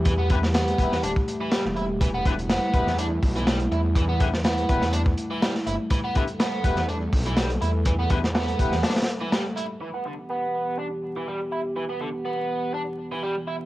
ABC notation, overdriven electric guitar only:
X:1
M:4/4
L:1/16
Q:"Swing 16ths" 1/4=123
K:Em
V:1 name="Overdriven electric guitar"
E, B, D, z B,4 D z2 E, G, z E z | E, B, D, z B,4 D z2 E, G, z E z | E, B, D, z B,4 D z2 E, G, z E z | E, B, D, z B,4 D z2 E, G, z E z |
E, B, D, z B,4 D z2 E, G, z E z | E, B, D, z B,4 D z2 E, G, z E z | E, B, D, z B,4 D z2 E, G, z E z |]